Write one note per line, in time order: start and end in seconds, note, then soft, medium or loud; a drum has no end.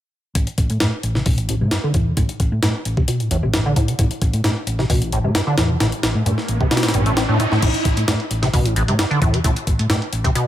0.35 0.44 A1 loud
0.35 0.42 A2 medium
0.35 kick loud
0.35 closed hi-hat medium
0.47 closed hi-hat soft
0.58 0.67 A1 medium
0.58 kick medium
0.58 closed hi-hat medium
0.70 0.78 A2 medium
0.70 closed hi-hat soft
0.80 0.87 G2 medium
0.80 0.90 A2 medium
0.80 snare loud
0.80 closed hi-hat medium
1.03 1.21 A1 medium
1.03 closed hi-hat medium
1.15 1.21 C3 medium
1.15 snare soft
1.26 1.63 A1 medium
1.26 1.40 B2 medium
1.26 kick loud
1.26 open hi-hat medium
1.38 1.47 A2 medium
1.38 closed hi-hat soft
1.49 1.56 A1 loud
1.49 closed hi-hat medium
1.61 1.69 A2 medium
1.61 1.67 C3 medium
1.71 1.78 G2 medium
1.71 snare loud
1.71 closed hi-hat medium
1.84 1.93 D3 medium
1.94 2.12 E2 medium
1.94 2.08 A2 medium
1.94 kick medium
1.94 closed hi-hat medium
2.06 2.12 C3 medium
2.17 2.26 A1 loud
2.17 2.24 A2 medium
2.17 kick loud
2.17 closed hi-hat medium
2.29 closed hi-hat soft
2.40 2.49 A1 medium
2.40 kick medium
2.40 closed hi-hat medium
2.52 2.60 A2 medium
2.63 2.69 G2 medium
2.63 2.72 A2 medium
2.63 snare loud
2.63 closed hi-hat medium
2.85 3.03 A1 medium
2.85 closed hi-hat medium
2.97 3.03 C3 medium
2.97 kick medium
3.08 3.21 B2 medium
3.08 closed hi-hat medium
3.20 3.29 A2 medium
3.20 closed hi-hat soft
3.31 3.37 A1 loud
3.31 3.40 E2 medium
3.31 closed hi-hat medium
3.43 3.72 A1 medium
3.43 3.49 C3 medium
3.54 3.60 G2 medium
3.54 snare loud
3.54 closed hi-hat medium
3.66 3.74 D3 loud
3.76 3.90 A2 medium
3.76 kick medium
3.76 closed hi-hat medium
3.88 3.94 C3 medium
3.88 closed hi-hat soft
3.99 4.08 A1 loud
3.99 4.06 A2 medium
3.99 kick loud
3.99 closed hi-hat medium
3.99 riser medium
4.11 closed hi-hat soft
4.22 4.31 A1 medium
4.22 kick medium
4.22 closed hi-hat medium
4.33 4.42 A2 medium
4.33 closed hi-hat soft
4.44 4.51 G2 medium
4.44 4.54 A2 medium
4.44 snare loud
4.44 closed hi-hat medium
4.67 4.85 A1 medium
4.67 closed hi-hat medium
4.79 4.85 C3 medium
4.79 snare soft
4.90 5.26 A1 loud
4.90 5.03 B2 medium
4.90 kick loud
4.90 open hi-hat medium
5.02 5.11 A2 medium
5.02 closed hi-hat soft
5.12 5.19 A1 loud
5.12 closed hi-hat medium
5.24 5.33 A2 medium
5.24 5.30 C3 medium
5.35 5.42 G2 medium
5.35 snare loud
5.35 closed hi-hat medium
5.47 5.56 D3 loud
5.58 5.76 E2 medium
5.58 5.71 A2 medium
5.58 snare loud
5.58 closed hi-hat medium
5.70 5.76 C3 medium
5.80 5.90 A1 loud
5.80 5.87 A2 medium
5.80 snare loud
5.80 closed hi-hat medium
5.92 closed hi-hat soft
6.03 6.12 A1 medium
6.03 snare loud
6.03 closed hi-hat medium
6.15 6.24 A2 medium
6.26 6.32 G2 medium
6.26 6.35 A2 medium
6.26 closed hi-hat medium
6.38 snare soft
6.48 6.67 A1 medium
6.48 closed hi-hat medium
6.60 6.67 C3 medium
6.60 kick medium
6.71 6.85 B2 medium
6.71 snare medium
6.71 closed hi-hat medium
6.77 snare medium
6.77 closed hi-hat medium
6.83 6.92 A2 medium
6.83 snare medium
6.83 closed hi-hat medium
6.88 snare medium
6.88 closed hi-hat medium
6.94 7.25 A1 medium
6.94 7.04 G2 medium
6.94 closed hi-hat medium
7.06 7.12 A2 loud
7.06 closed hi-hat soft
7.17 7.23 C4 medium
7.17 snare loud
7.17 closed hi-hat medium
7.28 7.38 A2 loud
7.28 7.37 A2 medium
7.40 7.46 A2 medium
7.40 closed hi-hat medium
7.52 7.58 A2 medium
7.52 7.60 A2 medium
7.52 snare soft
7.62 7.72 A1 loud
7.62 7.69 A2 medium
7.62 kick loud
7.62 closed hi-hat medium
7.62 crash medium
7.74 closed hi-hat soft
7.85 7.94 A1 medium
7.85 kick medium
7.85 closed hi-hat medium
7.97 8.05 A2 medium
7.97 closed hi-hat soft
7.97 closed hi-hat medium
8.08 8.14 G2 medium
8.08 8.17 A2 medium
8.08 snare loud
8.08 closed hi-hat medium
8.20 closed hi-hat soft
8.31 8.48 A1 medium
8.31 closed hi-hat medium
8.42 8.48 C3 medium
8.42 snare soft
8.42 closed hi-hat medium
8.53 8.90 A1 loud
8.53 8.67 B2 medium
8.53 kick loud
8.53 closed hi-hat medium
8.53 open hi-hat medium
8.65 8.74 A2 medium
8.65 closed hi-hat soft
8.76 8.83 A1 loud
8.76 closed hi-hat medium
8.88 8.97 A2 medium
8.88 8.94 C3 medium
8.88 closed hi-hat medium
8.99 9.05 G2 medium
8.99 snare loud
8.99 closed hi-hat medium
9.11 9.20 D3 loud
9.11 closed hi-hat soft
9.21 9.39 E2 medium
9.21 9.35 A2 medium
9.21 kick loud
9.21 closed hi-hat medium
9.33 9.39 C3 medium
9.33 closed hi-hat medium
9.44 9.54 A1 loud
9.44 9.51 A2 medium
9.44 kick loud
9.44 closed hi-hat medium
9.56 closed hi-hat soft
9.67 9.76 A1 medium
9.67 kick medium
9.67 closed hi-hat medium
9.79 9.87 A2 medium
9.79 closed hi-hat medium
9.90 9.96 G2 medium
9.90 9.99 A2 medium
9.90 snare loud
9.90 closed hi-hat medium
10.02 closed hi-hat soft
10.13 10.30 A1 medium
10.13 closed hi-hat medium
10.24 10.30 C3 medium
10.24 kick medium
10.24 closed hi-hat medium
10.35 10.47 B2 medium
10.35 closed hi-hat medium